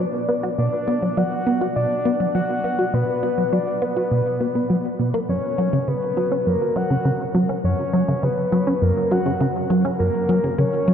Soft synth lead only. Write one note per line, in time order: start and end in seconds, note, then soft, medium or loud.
0.00 0.25 D5 medium
0.58 1.19 D5 loud
1.17 1.75 F#5 loud
1.76 2.31 D5 loud
2.35 2.95 F#5 loud
2.94 3.54 B4 loud
3.53 3.84 D5 medium
3.82 5.00 B4 medium
5.29 5.89 C#5 medium
5.88 6.48 B4 medium
6.47 6.78 A#4 loud
6.76 7.35 F#5 loud
7.64 8.25 C#5 medium
8.23 8.84 B4 medium
8.82 9.13 A#4 loud
9.11 9.70 F#5 loud
9.99 10.60 A#4 loud
10.58 10.94 C#5 loud